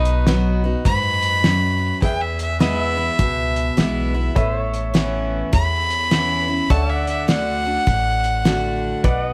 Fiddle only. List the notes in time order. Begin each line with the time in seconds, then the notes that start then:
Already playing: D#4
0.85 B5
2.02 G5
2.21 E5
2.41 E5
2.61 E5
5.53 B5
6.70 A5
6.90 E5
7.09 E5
7.29 F#5